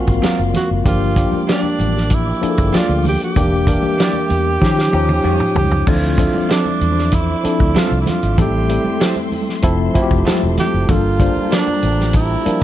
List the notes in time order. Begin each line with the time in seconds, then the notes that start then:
Already playing: F3 A#3 C4 F4 F#4 D5 F5 C6
0.06 G#1 F5, kick, closed hi-hat
0.22 C4 F#4 A#4 F5, snare, closed hi-hat, muted conga, high conga
0.39 F#1
0.54 F#4, snare, closed hi-hat, high conga, low conga
0.71 F#1
0.85 G1 F3 A#3 D4 F4 G4 D5 G5 D6, kick, closed hi-hat, muted conga, low conga
1.16 F3 A#3 D4 G4, kick, closed hi-hat
1.32 muted fingered electric bass stroke, high conga
1.47 A#3 D4 F4 G4 D5, snare, closed hi-hat
1.63 high conga
1.79 A1, closed hi-hat, muted conga, high conga
1.97 snare
2.10 kick, closed hi-hat, muted conga
2.14 E4
2.41 F3 A#3 D4 G#4, muted fingered electric bass stroke, closed hi-hat, muted conga
2.49 A4
2.58 G1, kick, closed hi-hat
2.73 A#3 F4 G4 D5, snare, closed hi-hat, muted conga, high conga
2.89 D2
3.04 open hi-hat, muted conga, high conga, low conga
3.09 G4
3.21 G4, closed hi-hat
3.36 E1 E3 A#3 D4 G4 E5, kick, closed hi-hat, low conga
3.67 E3 A#3 D4 A#4, kick, closed hi-hat, muted conga
3.82 muted fingered electric bass stroke, high conga
3.98 A#3 E4 G4 D5, snare, closed hi-hat, muted conga
4.13 high conga
4.29 E2, closed hi-hat, muted conga, high conga
4.61 D#3 F3 C#4 D#4 G4 C#5 F5 D#6, kick, snare, muted conga
4.79 snare
4.93 D#2 F3 C#4 D#4 G4, high tom
5.09 high tom
5.24 F2 A#3 F4 G4 C#5, muted conga, high conga
5.40 mid tom
5.55 C#2 G4, floor tom, muted conga, high conga, low conga
5.71 floor tom
5.87 D2 F3 C4 D4 E4 F4 A4 C5 D5 E5 D6, kick, crash, low conga
6.18 F3 C4 D4 A4 E5, kick, closed hi-hat, muted conga
6.34 muted fingered electric bass stroke, high conga
6.49 C4 D4 F4 A4 E5, snare, closed hi-hat, muted conga
6.66 high conga
6.81 E2, closed hi-hat, high conga
6.99 snare
7.12 E4, kick, closed hi-hat, muted conga
7.43 F3 C4 D4 E4 A4, muted fingered electric bass stroke, closed hi-hat, muted conga
7.60 D2, kick
7.75 C4 F4 A4 E5, muted fingered electric bass stroke, snare, closed hi-hat, muted conga, high conga
7.91 C2
8.01 E4
8.06 F4, snare, closed hi-hat, muted conga, high conga, low conga
8.23 G#1, closed hi-hat
8.37 A1 G3 A3 C4 E4 G4 A4 G5 C6, kick, closed hi-hat, low conga
8.69 G3 A3 C4 E4 A4, closed hi-hat, muted conga
8.84 muted fingered electric bass stroke, high conga
9.00 E4 G4 C5 E5, snare, closed hi-hat, muted conga
9.16 high conga
9.32 open hi-hat, muted conga, high conga
9.49 snare
9.62 F1 F3 A3 C4 E4 A4 A5, kick, closed hi-hat
9.94 F3 A3 C4 E4 F#4, kick, closed hi-hat
10.02 G4
10.11 F1, kick
10.25 C4 F4 A4 E5, muted fingered electric bass stroke, snare, closed hi-hat, muted conga, high conga
10.43 E1
10.57 G4, snare, closed hi-hat, muted conga, high conga, low conga
10.74 F#1
10.88 G1 G3 A#3 D4 F4 G4 A4 G5 A#5, kick, closed hi-hat, low conga
11.19 G3 A#3 D4 F4 C5, kick, closed hi-hat, muted conga
11.36 muted fingered electric bass stroke, high conga
11.51 A#3 D4 F4 A4 D5, snare, closed hi-hat, muted conga
11.68 high conga
11.83 A1, closed hi-hat, high conga
12.00 snare
12.13 E4, kick, closed hi-hat, muted conga
12.45 F3 G3 A#3 D4 A#4, muted fingered electric bass stroke, closed hi-hat, muted conga